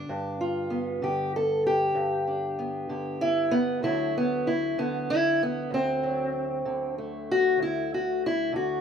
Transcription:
steel-string acoustic guitar
Already playing: D3 D4
0.09 G2
0.41 F4
0.70 B3
1.02 D3 G4
1.36 A4
1.67 G4
1.95 G2
2.27 D4
2.59 B3
2.89 D3 G4
3.21 E4
3.51 B3
3.82 D2 D3 F#3 A3 E4
4.18 B3
4.47 E4
4.78 D3 B3
5.10 E4
5.43 B3
5.70 D2 C4
6.03 F#3
6.65 D3
6.98 A3
7.31 F#4
7.59 D2 E4
7.94 F#4
8.26 E4
8.52 D3 F#4

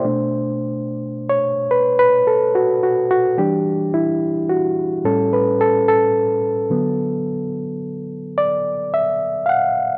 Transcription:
reed electric piano
Already playing: C5
0.04 B2 A3 D4
1.29 C#5
1.71 B4
1.99 B4
2.27 A4
2.55 F#4
2.83 F#4
3.11 F#4
3.38 E3 G3 D4 G4
3.94 E4
4.49 F#4
5.04 A2 G3 C#4 A4
5.33 B4
5.61 A4
5.88 A4
6.70 D3 F#3 B3
8.38 D5
8.94 E5
9.46 F5 F#5

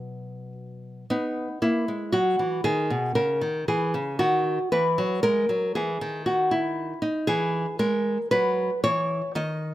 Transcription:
nylon-string guitar
Already playing: B2 F#3 D#4 F#4 B4
1.10 B3 D#4
1.62 A#3 E4
1.88 G#3
2.12 F#3 F#4
2.39 E3
2.64 D#3 G#4
2.90 B2
3.15 C#3 A#4
3.41 D#3
3.68 E3 G#4
3.94 C#3
4.19 D#3 F#4
4.72 E3 B4
4.98 F#3
5.23 G#3 A#4
5.49 F#3
5.75 E3 G#4
6.01 D#3
6.26 F#4
6.51 E4
7.02 D#4
7.27 E3 G#4
7.79 G#3 A#4
8.31 F#3 B4
8.84 E3 C#5
9.35 D#3 D#5

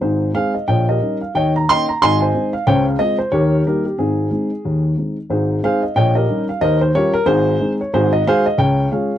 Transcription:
upright piano
0.01 G#1 G#2 D#4 G#4 C5
0.34 G#3 C4 D#4 G#4 C5 F5
0.54 D#5
0.68 A#1 A#2 C#5 D#5 G5
0.89 G4 A#4 D#5
1.01 G3 C#4 D#4
1.21 F5
1.34 D#2 D#3 C#5 D#5 G5
1.56 A#5
1.69 A#3 C#4 D#4 D#5 G5 C6
1.89 A#5
2.02 G#1 G#2 D#5 G#5 C6
2.21 C5 D#5 G#5
2.34 G#3 C4 D#4
2.53 F5
2.67 C#2 C#3 C5 C#5 G5
2.86 F5
2.99 G#3 C4 F4 D#5
3.18 C5
3.32 D#2 D#3 G4 A#4 C#5
3.66 G3 A#3 D#4 G4 A#4
3.85 G4
3.98 G#1 G#2 C4 D#4 G#4
4.31 G#3 C4 D#4
4.65 D#2 D#3
4.97 G#3 C4 D#4
5.30 G#1 G#2 D#4 G#4 C5
5.63 G#3 C4 D#4 G#4 C5 F5
5.83 D#5
5.96 A#1 A#2 C#5 D#5 G5
6.15 G4 A#4 D#5
6.29 G3 C#4 D#4
6.49 F5
6.61 D#2 D#3 A#4 C5 D#5
6.81 C5
6.95 G3 C#4 F4 G4 A#4 C#5
7.13 A#4
7.26 G#1 G#2 D#4 G#4 C5
7.60 G#3 C4 D#4
7.81 C#5
7.93 G#1 G#2 F#4 G#4 C5
8.13 D#5
8.27 G#3 D#4 F#4 G#4 C5 F5
8.46 D#5
8.58 C#2 C#3 C#5 G5
8.92 G#3 C#4 F4 G#4 C#5 F5

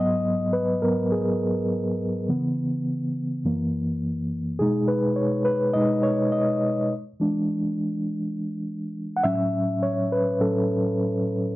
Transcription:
reed electric piano
Already playing: G#2 F#3 B3 D#5
0.53 B4
0.82 G#2 F#3 B3 A#4
1.12 G#4
2.29 C#3 E3 B3
3.44 F#2 E3 A#3
4.59 B2 G#3 D#4 G#4
4.88 B4
5.16 C#5
5.45 B4
5.74 B2 G#3 D#4 D#5
6.03 C#5
6.32 D#5
7.20 E3 G#3 D4
9.17 F#5
9.24 A2 F#3 C#4 E5
9.83 C#5
10.12 B4
10.40 A2 F#3 C#4 A4

